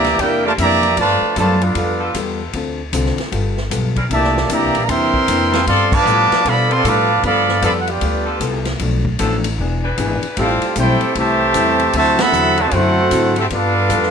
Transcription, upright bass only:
0, 0, Header, 1, 3, 480
1, 0, Start_track
1, 0, Key_signature, 1, "major"
1, 0, Tempo, 391645
1, 1190, Time_signature, 4, 2, 24, 8
1, 17288, End_track
2, 0, Start_track
2, 0, Title_t, "Upright bass"
2, 0, Program_c, 0, 32
2, 0, Note_on_c, 0, 38, 107
2, 208, Note_off_c, 0, 38, 0
2, 232, Note_on_c, 0, 40, 94
2, 697, Note_off_c, 0, 40, 0
2, 714, Note_on_c, 0, 41, 94
2, 1178, Note_off_c, 0, 41, 0
2, 1192, Note_on_c, 0, 43, 96
2, 1477, Note_off_c, 0, 43, 0
2, 1672, Note_on_c, 0, 42, 109
2, 2137, Note_off_c, 0, 42, 0
2, 2144, Note_on_c, 0, 41, 88
2, 2613, Note_off_c, 0, 41, 0
2, 2634, Note_on_c, 0, 40, 93
2, 3098, Note_off_c, 0, 40, 0
2, 3110, Note_on_c, 0, 38, 90
2, 3577, Note_off_c, 0, 38, 0
2, 3589, Note_on_c, 0, 36, 105
2, 3876, Note_off_c, 0, 36, 0
2, 4069, Note_on_c, 0, 31, 84
2, 4536, Note_off_c, 0, 31, 0
2, 4552, Note_on_c, 0, 35, 94
2, 5017, Note_off_c, 0, 35, 0
2, 5033, Note_on_c, 0, 36, 99
2, 5498, Note_off_c, 0, 36, 0
2, 5507, Note_on_c, 0, 38, 104
2, 5666, Note_off_c, 0, 38, 0
2, 5666, Note_on_c, 0, 36, 59
2, 5819, Note_off_c, 0, 36, 0
2, 5826, Note_on_c, 0, 34, 70
2, 5978, Note_off_c, 0, 34, 0
2, 5990, Note_on_c, 0, 40, 87
2, 6457, Note_off_c, 0, 40, 0
2, 6473, Note_on_c, 0, 41, 91
2, 6938, Note_off_c, 0, 41, 0
2, 6952, Note_on_c, 0, 43, 100
2, 7412, Note_off_c, 0, 43, 0
2, 7420, Note_on_c, 0, 45, 110
2, 7710, Note_off_c, 0, 45, 0
2, 7908, Note_on_c, 0, 47, 88
2, 8376, Note_off_c, 0, 47, 0
2, 8388, Note_on_c, 0, 45, 99
2, 8855, Note_off_c, 0, 45, 0
2, 8862, Note_on_c, 0, 43, 99
2, 9332, Note_off_c, 0, 43, 0
2, 9342, Note_on_c, 0, 41, 99
2, 9812, Note_off_c, 0, 41, 0
2, 9824, Note_on_c, 0, 38, 93
2, 10293, Note_off_c, 0, 38, 0
2, 10299, Note_on_c, 0, 36, 94
2, 10771, Note_off_c, 0, 36, 0
2, 10785, Note_on_c, 0, 35, 94
2, 11254, Note_off_c, 0, 35, 0
2, 11268, Note_on_c, 0, 33, 105
2, 11735, Note_off_c, 0, 33, 0
2, 11743, Note_on_c, 0, 28, 91
2, 12213, Note_off_c, 0, 28, 0
2, 12229, Note_on_c, 0, 32, 91
2, 12515, Note_off_c, 0, 32, 0
2, 12711, Note_on_c, 0, 33, 94
2, 12997, Note_off_c, 0, 33, 0
2, 13188, Note_on_c, 0, 35, 107
2, 13475, Note_off_c, 0, 35, 0
2, 13672, Note_on_c, 0, 36, 81
2, 14138, Note_off_c, 0, 36, 0
2, 14147, Note_on_c, 0, 40, 90
2, 14615, Note_off_c, 0, 40, 0
2, 14628, Note_on_c, 0, 38, 103
2, 15096, Note_off_c, 0, 38, 0
2, 15105, Note_on_c, 0, 40, 97
2, 15575, Note_off_c, 0, 40, 0
2, 15592, Note_on_c, 0, 42, 94
2, 16058, Note_off_c, 0, 42, 0
2, 16072, Note_on_c, 0, 44, 93
2, 16538, Note_off_c, 0, 44, 0
2, 16557, Note_on_c, 0, 43, 91
2, 17021, Note_off_c, 0, 43, 0
2, 17034, Note_on_c, 0, 41, 105
2, 17288, Note_off_c, 0, 41, 0
2, 17288, End_track
3, 0, Start_track
3, 0, Title_t, "Muted upright bass strokes"
3, 1489, Note_on_c, 9, 29, 41
3, 1611, Note_off_c, 9, 29, 0
3, 7734, Note_on_c, 9, 29, 47
3, 7857, Note_off_c, 9, 29, 0
3, 12527, Note_on_c, 9, 29, 52
3, 12650, Note_off_c, 9, 29, 0
3, 13019, Note_on_c, 9, 29, 41
3, 13142, Note_off_c, 9, 29, 0
3, 17288, End_track
0, 0, End_of_file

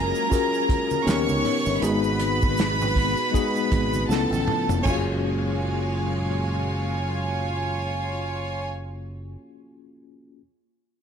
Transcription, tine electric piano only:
0, 0, Header, 1, 2, 480
1, 0, Start_track
1, 0, Key_signature, 6, "major"
1, 0, Tempo, 758534
1, 1155, Time_signature, 4, 2, 24, 8
1, 6974, End_track
2, 0, Start_track
2, 0, Title_t, "Tine electric piano"
2, 0, Program_c, 0, 4
2, 0, Control_c, 0, 64, 127
2, 0, Note_on_c, 0, 61, 92
2, 0, Note_on_c, 0, 65, 78
2, 0, Note_on_c, 0, 66, 80
2, 0, Note_on_c, 0, 68, 79
2, 0, Note_on_c, 0, 70, 101
2, 111, Note_off_c, 0, 61, 0
2, 115, Note_off_c, 0, 65, 0
2, 116, Note_off_c, 0, 66, 0
2, 120, Note_off_c, 0, 68, 0
2, 123, Note_off_c, 0, 70, 0
2, 189, Note_on_c, 0, 61, 85
2, 191, Note_on_c, 0, 65, 83
2, 198, Note_on_c, 0, 66, 81
2, 201, Note_on_c, 0, 68, 77
2, 209, Note_on_c, 0, 70, 101
2, 659, Note_off_c, 0, 61, 0
2, 659, Note_on_c, 0, 59, 89
2, 667, Note_on_c, 0, 61, 87
2, 669, Note_on_c, 0, 63, 80
2, 672, Note_off_c, 0, 70, 0
2, 673, Note_off_c, 0, 65, 0
2, 674, Note_on_c, 0, 67, 86
2, 676, Note_off_c, 0, 66, 0
2, 678, Note_off_c, 0, 68, 0
2, 680, Note_on_c, 0, 70, 100
2, 684, Control_c, 0, 64, 0
2, 785, Control_c, 0, 64, 127
2, 1107, Note_off_c, 0, 59, 0
2, 1111, Note_off_c, 0, 61, 0
2, 1112, Note_off_c, 0, 63, 0
2, 1114, Note_off_c, 0, 67, 0
2, 1117, Note_off_c, 0, 70, 0
2, 1141, Note_on_c, 0, 56, 89
2, 1146, Note_on_c, 0, 59, 78
2, 1151, Note_on_c, 0, 63, 83
2, 1155, Note_on_c, 0, 66, 82
2, 1161, Note_on_c, 0, 68, 101
2, 1163, Control_c, 0, 64, 0
2, 1274, Control_c, 0, 64, 127
2, 2027, Note_off_c, 0, 56, 0
2, 2030, Note_off_c, 0, 59, 0
2, 2032, Note_off_c, 0, 63, 0
2, 2034, Note_off_c, 0, 66, 0
2, 2037, Note_off_c, 0, 68, 0
2, 2097, Note_on_c, 0, 56, 80
2, 2104, Note_on_c, 0, 59, 78
2, 2107, Note_on_c, 0, 63, 81
2, 2112, Note_on_c, 0, 66, 79
2, 2116, Note_on_c, 0, 68, 105
2, 2577, Note_off_c, 0, 59, 0
2, 2584, Note_on_c, 0, 59, 86
2, 2586, Note_off_c, 0, 56, 0
2, 2590, Note_on_c, 0, 61, 81
2, 2591, Note_off_c, 0, 63, 0
2, 2593, Note_off_c, 0, 66, 0
2, 2594, Note_on_c, 0, 64, 74
2, 2595, Note_off_c, 0, 68, 0
2, 2598, Note_on_c, 0, 65, 76
2, 2603, Control_c, 0, 64, 0
2, 2604, Note_on_c, 0, 69, 102
2, 2697, Control_c, 0, 64, 127
2, 3029, Note_off_c, 0, 59, 0
2, 3029, Note_on_c, 0, 58, 78
2, 3032, Note_off_c, 0, 61, 0
2, 3034, Note_off_c, 0, 64, 0
2, 3036, Note_off_c, 0, 65, 0
2, 3039, Note_off_c, 0, 69, 0
2, 3050, Note_on_c, 0, 61, 68
2, 3072, Note_on_c, 0, 65, 74
2, 3081, Control_c, 0, 64, 0
2, 3094, Note_on_c, 0, 66, 70
2, 3115, Note_on_c, 0, 68, 80
2, 3210, Control_c, 0, 64, 127
2, 5896, Note_off_c, 0, 58, 0
2, 5907, Note_off_c, 0, 61, 0
2, 5918, Note_off_c, 0, 65, 0
2, 5929, Note_off_c, 0, 66, 0
2, 5939, Note_off_c, 0, 68, 0
2, 6586, Control_c, 0, 64, 0
2, 6974, End_track
0, 0, End_of_file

